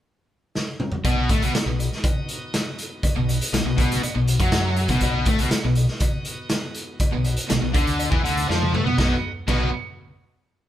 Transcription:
0.55 snare
0.80 mid tom
0.92 floor tom
1.05 fingered electric bass B1, distorted electric guitar B2, tonewheel organ B3 D#4 F#4 D#5, kick, closed hi-hat, cowbell
1.29 fingered electric bass A2, distorted electric guitar A3, kick, closed hi-hat, cowbell
1.41 fingered electric bass B1, distorted electric guitar B2, closed hi-hat
1.54 muted distorted electric guitar stroke, muted overdriven electric guitar stroke, snare, closed hi-hat, cowbell
1.66 fingered electric bass B1, distorted electric guitar B2
1.79 closed hi-hat, cowbell
1.92 snare
2.04 kick, closed hi-hat, cowbell
2.29 closed hi-hat
2.54 snare, closed hi-hat, cowbell
2.78 closed hi-hat
3.03 kick, closed hi-hat, cowbell
3.16 fingered electric bass B1, distorted electric guitar B2
3.29 closed hi-hat, cowbell
3.41 closed hi-hat
3.53 fingered electric bass B1, distorted electric guitar B2, snare, closed hi-hat, cowbell
3.65 fingered electric bass B1, distorted electric guitar B2
3.78 fingered electric bass B1, distorted electric guitar B2, kick, closed hi-hat, cowbell
3.92 snare, closed hi-hat
4.03 muted distorted electric guitar stroke, muted overdriven electric guitar stroke, closed hi-hat, cowbell
4.15 fingered electric bass B1, distorted electric guitar B2
4.27 closed hi-hat
4.40 fingered electric bass F#2, distorted electric guitar F#3, kick, closed hi-hat
4.52 snare, closed hi-hat, cowbell
4.76 closed hi-hat
4.88 fingered electric bass B1, distorted electric guitar B2, kick, closed hi-hat
5.01 fingered electric bass B1, distorted electric guitar B2, tonewheel organ B3 F#4 D#5, kick, closed hi-hat, cowbell
5.25 fingered electric bass A2, distorted electric guitar A3, kick, closed hi-hat, cowbell
5.39 fingered electric bass B1, distorted electric guitar B2, closed hi-hat
5.51 muted overdriven electric guitar stroke, muted distorted electric guitar stroke, muted fingered electric bass stroke, snare, closed hi-hat, cowbell
5.64 fingered electric bass B1, distorted electric guitar B2
5.75 closed hi-hat, cowbell
5.88 snare
6.00 kick, closed hi-hat, cowbell
6.25 closed hi-hat
6.49 snare, closed hi-hat, cowbell
6.74 closed hi-hat
7.00 kick, closed hi-hat, cowbell
7.13 fingered electric bass B1, distorted electric guitar B2
7.24 closed hi-hat, cowbell
7.37 closed hi-hat
7.49 fingered electric bass B1, distorted electric guitar B2, snare, closed hi-hat, cowbell
7.62 fingered electric bass B1, distorted electric guitar B2
7.74 fingered electric bass D2, distorted electric guitar D3, kick, closed hi-hat, cowbell
7.87 closed hi-hat
7.99 closed hi-hat, cowbell
8.11 fingered electric bass E2, distorted electric guitar E3, kick
8.24 fingered electric bass D2, distorted electric guitar D3, closed hi-hat
8.37 closed hi-hat
8.49 fingered electric bass F2, distorted electric guitar F3, snare, cowbell
8.62 high tom
8.73 fingered electric bass A2, distorted electric guitar A3, mid tom
8.85 fingered electric bass B2, distorted electric guitar B3, floor tom
8.97 fingered electric bass B1, distorted electric guitar B2 F#3 B3 D#4 F#4 B4, tonewheel organ B3 D#4 F#4 D#5, kick, snare, cowbell
9.48 fingered electric bass B1, distorted electric guitar B2 F#3 B3 D#4 F#4 B4, kick, crash, cowbell

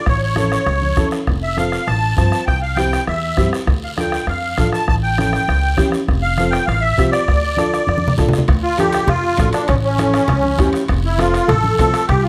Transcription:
0.06 upright bass A1, accordion C#5, bombo low, bombo rim, long guiro
0.23 accordion C#5
0.35 upright piano C#4 E4 A4, bombo rim, high conga, short guiro
0.52 bombo rim, short guiro
0.66 upright bass C#2, bombo rim, long guiro
0.82 high conga
0.96 upright bass E2, upright piano C#4 E4 A4, bombo low, bombo rim, high conga, short guiro
1.11 bombo rim, short guiro
1.27 upright bass F1, bombo low, bombo rim, long guiro
1.43 accordion E5
1.57 upright piano C4 F4 A4, accordion F5, bombo rim, high conga, short guiro
1.72 bombo rim, short guiro
1.87 upright bass A1, accordion A5, bombo rim, long guiro
2.17 upright bass G2, upright piano C4 F4 C5, accordion A5, bombo low, bombo rim, high conga, short guiro
2.32 bombo rim, short guiro
2.47 upright bass C2, accordion G5, bombo low, bombo rim, long guiro
2.62 accordion F5
2.75 upright piano C4 E4 G4, accordion G5, bombo rim, high conga, short guiro
2.93 bombo rim, short guiro
3.07 upright bass E2, accordion E5, bombo rim, long guiro
3.37 upright bass G2, upright piano C4 E4 G4, bombo low, bombo rim, high conga, short guiro
3.53 bombo rim, short guiro
3.67 upright bass D2, bombo low, bombo rim, long guiro
3.84 accordion F5
3.97 upright piano D4 F4 A4, accordion G5, bombo rim, high conga, short guiro
4.12 bombo rim, short guiro
4.27 upright bass F2, accordion F5, bombo rim, long guiro
4.58 upright bass A1, upright piano D4 F4 A4, bombo low, bombo rim, high conga, short guiro
4.73 accordion A5, bombo rim, short guiro
4.88 upright bass A1, accordion A5, bombo low, bombo rim, long guiro
5.03 accordion G5
5.18 upright piano C#4 E4 A4, bombo rim, high conga, short guiro
5.33 bombo rim, short guiro
5.48 upright bass C#2, bombo rim, long guiro
5.77 upright bass E2, upright piano C#4 E4 G4, bombo low, bombo rim, high conga, short guiro
5.92 bombo rim, short guiro
6.08 upright bass F1, bombo low, bombo rim, long guiro
6.22 accordion F5
6.37 upright piano C4 F4 A4, bombo rim, high conga, short guiro
6.51 accordion G5, bombo rim, short guiro
6.66 upright bass A1, accordion F5, bombo rim, long guiro
6.81 accordion E5
6.97 upright bass C2, upright piano C4 F4 G4, bombo low, bombo rim, high conga, short guiro
7.11 accordion D5, bombo rim, short guiro
7.28 upright bass D2, bombo low, bombo rim, long guiro
7.57 upright piano D4 F4 A4, bombo rim, high conga, short guiro
7.74 bombo rim, short guiro
7.87 upright bass F2, bombo rim, high conga, long guiro
7.98 high conga
8.08 low conga
8.17 upright bass A1, upright piano D4 F4 A4, bombo low, bombo rim, low conga, short guiro
8.29 low conga
8.33 bombo rim, short guiro
8.38 low conga
8.48 upright bass D2, bombo low, bombo rim, high timbale, long guiro
8.63 accordion F4
8.77 upright piano D4 F4 A4, accordion G4, bombo rim, high conga, high timbale, short guiro
8.92 bombo rim, high timbale, short guiro
9.07 upright bass F2, accordion F4, bombo rim, low conga, high timbale, long guiro
9.37 upright bass A1, upright piano D4 F4 A4, bombo low, bombo rim, high conga, high timbale, low timbale, short guiro
9.53 accordion D4, bombo rim, high timbale, short guiro
9.68 upright bass A1, accordion C#4, bombo low, bombo rim, low conga, high timbale, long guiro
9.84 accordion C#4
9.98 upright piano C#4 E4 A4, bombo rim, high conga, high timbale, short guiro
10.14 bombo rim, high timbale, short guiro
10.28 upright bass C#2, bombo rim, low conga, high timbale, long guiro
10.43 high conga
10.58 upright bass E2, upright piano C#4 E4 G4, bombo low, bombo rim, high conga, high timbale, low timbale, short guiro
10.73 bombo rim, high timbale, short guiro
10.88 upright bass F1, bombo low, bombo rim, high timbale, long guiro
11.05 accordion E4
11.18 upright piano C4 F4 A4, accordion F4, bombo rim, high conga, high timbale, short guiro
11.34 bombo rim, high timbale, short guiro
11.48 upright bass A1, accordion A4, bombo rim, low conga, high timbale, long guiro
11.64 high conga
11.77 upright bass C2, upright piano C4 F4 A4, accordion A4, bombo low, bombo rim, high conga, high timbale, low timbale, short guiro
11.94 bombo rim, high timbale, short guiro
12.08 upright bass C2, accordion G4, bombo low, bombo rim, low conga, high timbale, long guiro
12.23 accordion F4

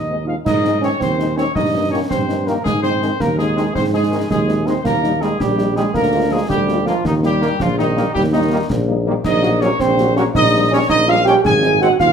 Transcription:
Already playing: tuba D#2, euphonium D#4, trumpet section D#5
0.09 french horn section G#3 C4 D#4
0.27 french horn section G#3 C4 D#4, euphonium F4, trumpet section F5
0.45 tuba G#2, euphonium D#4, trumpet section D#5, concert bass drum, snare, crash
0.63 french horn section G#3 C4 D#4, snare
0.81 trombone section D#3 C4, french horn section G#3 C4 D#4, euphonium C#4, trumpet section C#5, snare
0.99 tuba D#2, euphonium C4, trumpet section C5, concert bass drum, snare
1.19 french horn section G#3 C4 D#4, snare
1.36 trombone section D#3 C4, french horn section G#3 C4 D#4, euphonium C#4, trumpet section C#5, snare
1.54 tuba G2, euphonium D#4, trumpet section D#5, concert bass drum, snare
1.74 french horn section A#3 C#4 D#4
1.91 trombone section D#3 A#3, french horn section A#3 C#4 D#4, euphonium C#4, trumpet section C#5
2.09 tuba G2, euphonium C4, trumpet section C5, concert bass drum, snare
2.29 french horn section A#3 C#4 D#4, snare
2.46 trombone section D#3 A#3, euphonium A#3, french horn section A#3 C#4 D#4, trumpet section A#4, snare
2.64 tuba G#2, euphonium G#3, trumpet section G#4, concert bass drum, snare
2.82 french horn section G#3 C4 D#4, euphonium C4, trumpet section C5, snare
3.01 trombone section D#3 G#3, french horn section G#3 C4 D#4, snare
3.19 tuba D#2, euphonium A#3, trumpet section A#4, concert bass drum, snare
3.37 euphonium G#3, french horn section G#3 C4 D#4, trumpet section G#4, snare
3.56 trombone section D#3 G#3, french horn section G#3 C4 D#4, snare
3.74 tuba G#2, euphonium C4, trumpet section C5, concert bass drum, snare
3.93 euphonium G#3, french horn section G#3 C4 D#4, trumpet section G#4
4.11 trombone section D#3 G#3, french horn section G#3 C4 D#4
4.29 tuba D#2, euphonium G#3, trumpet section G#4, concert bass drum, snare
4.48 french horn section G#3 C4 D#4, snare
4.66 trombone section D#3 G#3, french horn section G#3 C4 D#4, euphonium C4, trumpet section C5, snare
4.84 tuba D#2, euphonium A#3, trumpet section A#4, concert bass drum, snare, crash
5.03 french horn section G3 D#4, snare
5.21 trombone section D#3 G3, french horn section G3 D#4, euphonium G#3, trumpet section G#4, snare
5.40 tuba A#1, euphonium G3, trumpet section G4, concert bass drum, snare
5.58 french horn section G3 D#4, snare
5.75 trombone section D#3 G3, french horn section G3 D#4, euphonium G#3, trumpet section G#4, snare
5.94 tuba D2, euphonium A#3, trumpet section A#4, concert bass drum, snare
6.13 french horn section G#3 A#3 F4
6.31 trombone section F3 A#3, euphonium G#3, french horn section G#3 A#3 F4, trumpet section G#4
6.48 tuba D2, euphonium G3, trumpet section G4, concert bass drum, snare
6.68 french horn section G#3 A#3 F4, snare
6.86 euphonium F3, trombone section F3 A#3, french horn section G#3 A#3 F4, trumpet section F4, snare
7.05 tuba D#2, euphonium D#3, trumpet section D#4, concert bass drum, snare
7.23 french horn section G3 A#3 D#4, euphonium G3, trumpet section G4, snare
7.41 trombone section D#3 A#3, french horn section G3 A#3 D#4, snare
7.59 tuba A#1, euphonium F3, trumpet section F4, concert bass drum, snare
7.77 euphonium D#3, french horn section G3 A#3 D#4, trumpet section D#4, snare
7.96 trombone section D#3 A#3, french horn section G3 A#3 D#4, snare
8.13 tuba D#2, euphonium G3, trumpet section G4, concert bass drum, snare
8.32 euphonium D#3, french horn section G3 A#3 D#4, trumpet section D#4
8.51 trombone section D#3 A#3, french horn section G3 A#3 D#4
8.70 tuba A#1, concert bass drum, snare
8.88 french horn section G3 A#3 D#4
9.06 trombone section D#3 A#3, french horn section G3 A#3 D#4
9.24 tuba A#1, euphonium D#4, trumpet section D#5, concert bass drum, snare, crash
9.43 french horn section F#3 A#3 F#4, snare
9.61 trombone section F#3 A#3, french horn section F#3 A#3 F#4, euphonium C#4, trumpet section C#5, snare
9.79 tuba A#1, euphonium C4, trumpet section C5, concert bass drum, snare
9.98 french horn section F#3 A#3 F#4, snare
10.15 trombone section F#3 A#3, french horn section F#3 A#3 F#4, euphonium C#4, trumpet section C#5, snare
10.34 tuba A#1, euphonium D#4, trumpet section D#5, concert bass drum, snare
10.54 french horn section G3 C#4 D#4
10.71 french horn section G3 C#4 D#4, trombone section G3 C#4, euphonium C#4, trumpet section C#5
10.89 tuba A#1, euphonium D#4, trumpet section D#5, concert bass drum, snare
11.08 french horn section G3 C#4 D#4, euphonium F4, trumpet section F5, snare
11.25 trombone section G3 C#4, french horn section G3 C#4 D#4, euphonium G4, trumpet section G5, snare
11.44 tuba G#1, euphonium G#4, trumpet section G#5, concert bass drum, snare
11.63 french horn section G#3 C4 D#4, snare
11.81 trombone section G#3 C4, french horn section G#3 C4 D#4, euphonium F#4, trumpet section F#5, snare
11.98 tuba D#2, euphonium F4, trumpet section F5, concert bass drum, snare

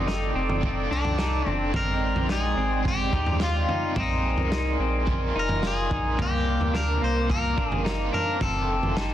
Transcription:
Already playing: sub bass G1, overdriven electric guitar F2 C3 D#3 A3 C4 F4, clean electric guitar D#4, analog synth pad A4 D5 G5 D6
0.07 clean electric guitar D#4, snare
0.35 sub bass F1, clean electric guitar C4
0.49 floor tom
0.61 overdriven electric guitar D#3 A3 D4, kick, floor tom
0.66 overdriven electric guitar F4
0.91 sub bass C2, clean electric guitar D4
1.05 floor tom
1.16 overdriven electric guitar D#3 A3 D4, clean electric guitar D#4, snare
1.21 overdriven electric guitar F4
1.46 sub bass F1, clean electric guitar C4 D4, floor tom
1.71 sub bass G#1, overdriven electric guitar G#3 C4, analog synth pad G#3 G5 C6, clean electric guitar C4, kick, floor tom
1.76 overdriven electric guitar D#4, clean electric guitar A#4
2.15 sub bass A#1, floor tom
2.29 clean electric guitar D#4 G#4, snare
2.57 sub bass G#1, clean electric guitar C4
2.83 overdriven electric guitar G#3 C4 D#4, kick, floor tom
2.88 overdriven electric guitar G4, clean electric guitar G4
3.13 sub bass D#2, clean electric guitar D#4, kick
3.26 floor tom
3.38 overdriven electric guitar G#3 C4 D#4, clean electric guitar F4, snare
3.43 clean electric guitar F4, overdriven electric guitar G4
3.69 clean electric guitar D#4, floor tom
3.94 sub bass A#1, overdriven electric guitar A#2 D#3, clean electric guitar C4, analog synth pad A#4 G#5, kick, floor tom
3.98 overdriven electric guitar G#3 C4 F4, clean electric guitar D#4
4.37 sub bass C2, floor tom
4.52 clean electric guitar D#4, snare
4.79 sub bass A#1, clean electric guitar C4
5.05 overdriven electric guitar D#3 G#3 C4, kick, floor tom
5.10 overdriven electric guitar F4
5.36 sub bass F1, clean electric guitar D#4 A#4
5.49 floor tom
5.61 overdriven electric guitar D#3 G#3 C4, clean electric guitar F4, snare
5.66 overdriven electric guitar F4, clean electric guitar G#4
5.91 sub bass A#1, clean electric guitar D#4, kick, floor tom
6.17 sub bass C2, overdriven electric guitar C3 A#3, clean electric guitar A#3, analog synth pad A#4 F5 D6, kick, floor tom
6.22 overdriven electric guitar C4 F4, clean electric guitar G4
6.60 sub bass D2, floor tom
6.73 clean electric guitar D4 A#4, snare
7.01 sub bass C2, clean electric guitar A#3 C5
7.28 overdriven electric guitar D#3 A#3 C4, clean electric guitar A#4, kick, floor tom
7.33 overdriven electric guitar F4
7.57 sub bass G1, clean electric guitar D4, kick
7.72 floor tom
7.84 overdriven electric guitar D#3 A#3 C4, clean electric guitar D#4, snare
7.89 overdriven electric guitar F4
8.13 clean electric guitar D4 A#4, floor tom
8.40 sub bass F1, overdriven electric guitar F2 C3 D#3 A3 D4 F4, clean electric guitar C4 A4, analog synth pad A4 G5 D6, kick, floor tom
8.82 sub bass G1, floor tom
8.95 overdriven electric guitar D#3 A3 D4, clean electric guitar D#4, snare
9.00 overdriven electric guitar F4

